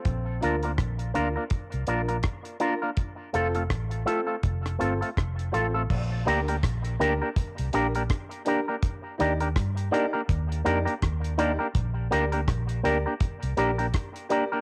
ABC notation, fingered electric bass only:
X:1
M:4/4
L:1/16
Q:"Swing 16ths" 1/4=82
K:Bb
V:1 name="Fingered electric bass" clef=bass
B,,,2 D,,2 B,,,2 D,, z2 C,, B,,,2 z4 | z2 F,,,2 A,,,2 z2 F,,,2 G,,, z F,,,2 A,,,2 | B,,,2 D,,2 B,,,2 D,, z2 C,, B,,,2 z4 | z2 E,,2 G,,2 z2 E,,2 F,, z E,,3 z |
B,,,2 D,,2 B,,,2 D,, z2 C,, B,,,2 z4 |]